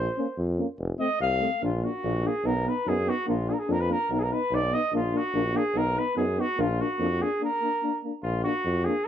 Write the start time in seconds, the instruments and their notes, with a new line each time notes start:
Already playing: cornet C5
0.17 euphonium A#3 C#4
0.38 tuba F2
0.59 euphonium A#3 C#4
0.80 tuba F1
0.99 euphonium A3 C4, cornet D#5
1.21 tuba C2, cornet F5
1.40 euphonium A3 C4
1.61 tuba A#1, euphonium A#3 D4, cornet F4
1.83 euphonium A#3 D4, cornet F#4
2.03 tuba A#1, euphonium A#3 D4
2.24 euphonium A#3 D4, cornet G#4
2.44 tuba B1, euphonium B3 D#4, cornet A#4
2.65 euphonium B3 D#4, cornet B4
2.86 tuba F#2, euphonium B3 D#4, cornet G#4
3.07 euphonium B3 D#4, cornet F#4
3.27 tuba A#1, euphonium A#3 D4, cornet F4
3.48 euphonium A#3 D4, cornet G#4
3.53 cornet A#4
3.59 cornet G#4
3.68 tuba F2, euphonium A#3 D4, cornet A#4
3.80 cornet B4
3.89 euphonium A#3 D4, cornet A#4
4.10 tuba B1, euphonium B3 D#4, cornet A#4
4.19 cornet G#4
4.23 cornet A#4
4.31 euphonium B3 D#4, cornet B4
4.51 tuba B1, euphonium B3 D#4, cornet D5
4.72 euphonium B3 D#4, cornet D#5
4.92 tuba A#1, euphonium A#3 D4, cornet F4
5.13 euphonium A#3 D4
5.17 cornet F#4
5.34 tuba A#1, euphonium A#3 D4
5.54 euphonium A#3 D4, cornet G#4
5.74 tuba B1, euphonium B3 D#4, cornet A#4
5.96 euphonium B3 D#4, cornet B4
6.16 tuba F#2, euphonium B3 D#4, cornet G#4
6.37 euphonium B3 D#4, cornet F#4
6.58 tuba A#1, euphonium A#3 D4, cornet F4
6.79 euphonium A#3 D4, cornet F#4
6.99 tuba F2, euphonium A#3 D4
7.19 euphonium A#3 D4, cornet G#4
7.41 euphonium A#3 D4, cornet A#4
7.61 euphonium A#3 D4
7.83 euphonium A#3 D4
8.04 euphonium A#3 D4
8.23 tuba A#1, cornet F4
8.44 euphonium A#3 D4, cornet F#4
8.65 tuba F2
8.84 euphonium A#3 D4, cornet G#4